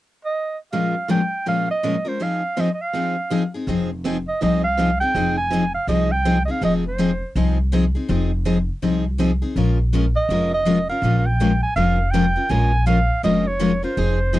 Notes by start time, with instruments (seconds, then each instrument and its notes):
0.25 clarinet D#5
0.72 steel-string acoustic guitar A#2 F3 G#3 C#4 F4 A#4, clarinet F5
1.09 steel-string acoustic guitar A#2 F3 G#3 C#4 F4 A#4, clarinet G5
1.46 steel-string acoustic guitar A#2 F3 G#3 C#4 F4 A#4, clarinet F5
1.71 clarinet D#5
1.83 steel-string acoustic guitar A#2 F3 G#3 C#4 F4 A#4
2.05 steel-string acoustic guitar G#3 C#4 F4 A#4, clarinet C5
2.20 steel-string acoustic guitar F3 C4 D#4 G#4, clarinet F5
2.57 steel-string acoustic guitar F3 C4 D#4 G#4, clarinet D#5
2.74 clarinet D#5
2.82 clarinet F5
2.94 steel-string acoustic guitar F3 C4 D#4 G#4
3.31 steel-string acoustic guitar F3 C4 D#4 G#4
3.54 steel-string acoustic guitar C4 D#4 G#4
3.67 upright bass F1, steel-string acoustic guitar F3 C4 D#4 G#4
4.05 steel-string acoustic guitar F3 C4 D#4 G#4
4.28 clarinet D#5
4.42 upright bass C2, steel-string acoustic guitar F3 C4 D#4 G#4, clarinet D#5
4.64 clarinet F5
4.78 steel-string acoustic guitar F3 C4 D#4 G#4
5.00 steel-string acoustic guitar C4 D#4 G#4, clarinet G5
5.15 upright bass F1, steel-string acoustic guitar F3 C4 D#4 G#4
5.38 clarinet G#5
5.52 steel-string acoustic guitar F3 C4 D#4 G#4
5.75 clarinet F5
5.87 upright bass C2, steel-string acoustic guitar F3 C4 D#4 G#4, clarinet D#5
6.12 clarinet G5
6.25 steel-string acoustic guitar F3 C4 D#4 G#4
6.45 steel-string acoustic guitar D#4 G#4, clarinet D#5
6.50 steel-string acoustic guitar C4, clarinet F5
6.61 upright bass F1, steel-string acoustic guitar F3 C4 D#4 G#4, clarinet D#5
6.88 clarinet C5
6.98 steel-string acoustic guitar F3 C4 D#4 G#4
7.35 upright bass C2, steel-string acoustic guitar F3 C4 D#4 G#4
7.72 steel-string acoustic guitar F3 C4 D#4 G#4
7.95 steel-string acoustic guitar C4 D#4 G#4
8.09 upright bass F1, steel-string acoustic guitar F3 C4 D#4 G#4
8.45 steel-string acoustic guitar F3 C4 D#4 G#4
8.82 upright bass C2, steel-string acoustic guitar F3 C4 D#4 G#4
9.18 steel-string acoustic guitar F3 C4 D#4 G#4
9.42 steel-string acoustic guitar C4 D#4 G#4
9.56 upright bass A#1, steel-string acoustic guitar F3 G#3 C#4 F4 A#4
9.93 steel-string acoustic guitar F3 G#3 C#4 F4 A#4
10.16 clarinet D#5
10.29 upright bass F1, steel-string acoustic guitar F3 G#3 C#4 F4 A#4
10.54 clarinet D#5
10.65 steel-string acoustic guitar F3 G#3 C#4 F4 A#4
10.89 steel-string acoustic guitar C#4 F4 A#4, clarinet F5
11.02 upright bass A#1, steel-string acoustic guitar F3 G#3 C#4 F4 A#4
11.18 clarinet F5
11.26 clarinet G5
11.40 steel-string acoustic guitar F3 G#3 C#4 F4 A#4
11.63 clarinet G#5
11.76 upright bass F1, steel-string acoustic guitar F3 G#3 C#4 F4 A#4, clarinet F5
12.11 steel-string acoustic guitar F3 G#3 C#4 F4, clarinet G5
12.15 steel-string acoustic guitar A#4
12.36 steel-string acoustic guitar C#4 F4 A#4
12.49 upright bass A#1, steel-string acoustic guitar F3 G#3 C#4 F4 A#4, clarinet G#5
12.86 steel-string acoustic guitar F3 G#3 C#4 F4 A#4, clarinet F5
13.23 upright bass F1, steel-string acoustic guitar F3 G#3 C#4 F4 A#4, clarinet D#5
13.47 clarinet C#5
13.59 steel-string acoustic guitar F3 G#3 C#4 F4 A#4
13.83 steel-string acoustic guitar C#4 F4 A#4, clarinet C5
13.97 upright bass F1, steel-string acoustic guitar F3 C4 D#4 G#4
14.33 steel-string acoustic guitar F3 C4 D#4 G#4